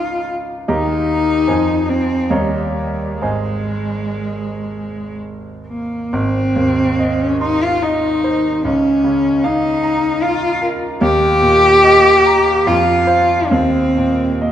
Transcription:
Already playing: C#2 F4 A#4 F5 A#5
0.68 D#2 D#4 G4 D#5 A#5
1.48 F2 C5 D#5 G#5
1.89 C4
2.30 D#2 G3 C#5 D#5 A#5
3.21 G#1 G#3 C5 D#5 G#5
5.67 A#3
6.13 G#1 C4
6.56 D#2
6.99 D#5
7.21 C#4
7.41 D#4 C6
7.63 F4
7.82 D#4 D#5
8.24 C5
8.64 C#2 C#4
9.04 C#3
9.44 D#4 F5
9.83 A#5
10.22 F4 F5
10.62 A#4
11.01 D#2 G4
11.41 A#2
11.84 D#5
12.26 A#5
12.66 F2 F4
13.07 C5 F5
13.50 D#2 C4
13.97 A#2
14.41 A#3 D#5

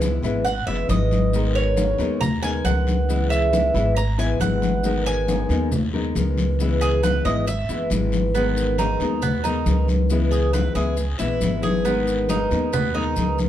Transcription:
Already playing: C#2
0.01 E3 G#3 B3 E4, high conga, short guiro, maracas
0.22 G#1 E3 G#3 B3 E4, high conga, short guiro, maracas
0.45 F#5, muted nylon-string guitar stroke, high conga, long guiro, maracas
0.66 F#1 E3 G#3 B3 E4 E5, high conga
0.89 G#1 E3 G#3 B3 E4 D#5, high conga, short guiro, maracas
1.11 high conga, short guiro, maracas
1.33 D#3 G#3 B3 D#4 A#4, long guiro, maracas
1.55 C#5
1.77 G#3 B3 D#4 A#4, high conga, short guiro, maracas
1.98 D#2 G#3 B3 D#4 A#4, high conga, short guiro, maracas
2.21 A#5, muted nylon-string guitar stroke, high conga, low conga, long guiro, maracas
2.42 G#3 B3 D#4 A#4 G#5, high conga, maracas
2.64 C#2 G#3 B3 D#4 A#4 F#5, high conga, short guiro, maracas
2.87 high conga, short guiro, maracas
3.08 C#3 E3 G#3 B3 E4, high conga, long guiro, maracas
3.30 E5, high conga, maracas
3.52 E3 G#3 B3 E4, high conga, short guiro, maracas
3.74 G#1 E3 G#3 B3 E4, high conga, short guiro, maracas
3.96 A#5, muted nylon-string guitar stroke, high conga, long guiro, maracas
4.18 E3 G#3 B3 E4 G#5, high conga, maracas
4.40 G#1 E3 G#3 B3 E4 F#5, high conga, short guiro, maracas
4.62 high conga, short guiro, maracas
4.84 D#3 G#3 B3 D#4 A#4, high conga, long guiro, maracas
5.06 G#5, high conga, maracas
5.28 G#3 B3 D#4 A#4, high conga, short guiro, maracas
5.49 D#2 G#3 B3 D#4 A#4, high conga, short guiro, maracas
5.71 muted nylon-string guitar stroke, high conga, low conga, long guiro, maracas
5.94 G#3 B3 D#4 A#4, high conga
6.15 C#2 G#3 B3 D#4 A#4, high conga, short guiro, maracas
6.37 high conga, short guiro, maracas
6.59 C#3 E3 G#3 B3 E4, high conga, long guiro, maracas
6.81 G#4, high conga, maracas
7.03 E3 G#3 B3 E4 B4, high conga, short guiro, maracas
7.25 G#1 E3 G#3 B3 E4 D#5, high conga, short guiro, maracas
7.46 E5, muted nylon-string guitar stroke, high conga, long guiro, maracas
7.69 F#1 E3 G#3 B3 E4, high conga, maracas
7.90 G#1 E3 G#3 B3 E4, high conga, short guiro, maracas
8.12 high conga, short guiro, maracas
8.34 D#3 G#3 B3 D#4 A#4, high conga, long guiro, maracas
8.57 high conga, maracas
8.78 G#3 B3 D#4 A#4, high conga, short guiro, maracas
9.00 D#2 G#3 B3 D#4 A#4, high conga, short guiro, maracas
9.22 B3, muted nylon-string guitar stroke, high conga, low conga, long guiro, maracas
9.44 G#3 B3 D#4 A#4, high conga, maracas
9.66 C#2 G#3 B3 D#4 A#4, high conga, short guiro, maracas
9.88 high conga, short guiro, maracas
10.10 C#3 E3 G#3 B3 E4, long guiro, maracas
10.31 G#4, high conga, maracas
10.53 E3 G#3 B3 E4 B4, high conga, short guiro, maracas
10.75 C#2 E3 G#3 B3 E4 G#4, high conga, short guiro, maracas
10.97 muted nylon-string guitar stroke, high conga, long guiro, maracas
11.19 A#1 E3 G#3 B3 E4, high conga, maracas
11.41 G#1 E3 G#3 B3 E4, high conga, short guiro, maracas
11.63 G#4, high conga, short guiro, maracas
11.85 D#3 G#3 B3 D#4 A#4, high conga, long guiro, maracas
12.08 high conga, maracas
12.29 G#3 B3 D#4 A#4, high conga, short guiro, maracas
12.51 D#2 G#3 B3 D#4 A#4, high conga, short guiro, maracas
12.73 B3, muted nylon-string guitar stroke, high conga, low conga, long guiro, maracas
12.95 G#3 B3 D#4 A#4, high conga
13.16 C#2 G#3 B3 D#4 A#4, high conga, short guiro, maracas
13.38 high conga, short guiro, maracas

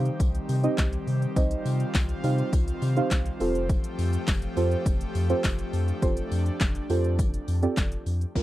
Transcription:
Already playing: D#3 G3 C4 D#4 G4 C5 F5
0.05 closed hi-hat, shaker
0.20 C2, kick, closed hi-hat, tambourine, shaker
0.35 closed hi-hat, shaker
0.49 C3, open hi-hat, tambourine, shaker
0.63 C4 D#4 G4 C5 D#5, closed hi-hat, shaker
0.78 C2, kick, snare, clap, closed hi-hat, tambourine, shaker
0.93 closed hi-hat, shaker
1.07 C3, open hi-hat, shaker
1.22 closed hi-hat, shaker
1.36 C2 C4 D#4 F4 G4 C5 D#5, kick, closed hi-hat, tambourine, shaker
1.51 closed hi-hat, shaker
1.65 C3, open hi-hat, tambourine, shaker
1.80 closed hi-hat, shaker
1.95 C2, kick, snare, clap, closed hi-hat, tambourine, shaker
2.09 closed hi-hat, shaker
2.24 C3 C4 D#4 G4 C5 F5, open hi-hat, tambourine, shaker
2.38 closed hi-hat, shaker
2.53 C2, kick, closed hi-hat, tambourine, shaker
2.68 closed hi-hat, shaker
2.82 C3, open hi-hat, tambourine, shaker
2.96 C4 D#4 G4 C5 F5, closed hi-hat, shaker
3.11 C2, kick, snare, clap, closed hi-hat, tambourine, shaker
3.26 closed hi-hat, shaker
3.40 F1 F3 A3 C4 F4 G4 A4 C5, open hi-hat, tambourine, shaker
3.55 closed hi-hat, shaker
3.69 kick, closed hi-hat, tambourine, shaker
3.84 closed hi-hat, shaker
3.98 F2, open hi-hat, tambourine, shaker
4.13 closed hi-hat, shaker
4.27 F1, kick, snare, clap, closed hi-hat, tambourine, shaker
4.42 closed hi-hat, shaker
4.57 F2 C4 F4 G4 A4 C5, open hi-hat, tambourine, shaker
4.71 closed hi-hat, shaker
4.86 F1, kick, closed hi-hat, tambourine, shaker
5.01 closed hi-hat, shaker
5.15 F2, open hi-hat, tambourine, shaker
5.29 C4 F4 G4 A4 C5, closed hi-hat, shaker
5.44 F1, kick, snare, clap, closed hi-hat, tambourine, shaker
5.59 closed hi-hat, shaker
5.73 F2 D4, open hi-hat, tambourine, shaker
5.88 closed hi-hat, shaker
6.02 F1 C4 F4 G4 A4 C5, kick, closed hi-hat, tambourine, shaker
6.17 closed hi-hat, shaker
6.32 F2, open hi-hat, tambourine, shaker
6.46 closed hi-hat, shaker
6.60 F1, kick, snare, clap, closed hi-hat, tambourine, shaker
6.75 closed hi-hat, shaker
6.90 F2 C4 F4 G4 A4 C5, open hi-hat, tambourine, shaker
7.04 closed hi-hat, shaker
7.19 F1, kick, closed hi-hat, tambourine, shaker
7.34 closed hi-hat, shaker
7.48 F2, open hi-hat, tambourine, shaker
7.62 C4 F4 G4 A4 D5, closed hi-hat, shaker
7.77 F1, kick, snare, clap, closed hi-hat, tambourine, shaker
7.92 closed hi-hat, shaker
8.06 F2, open hi-hat, tambourine, shaker
8.21 closed hi-hat, shaker
8.35 A#1 A#3 D4 F4 A#4, kick, downlifter

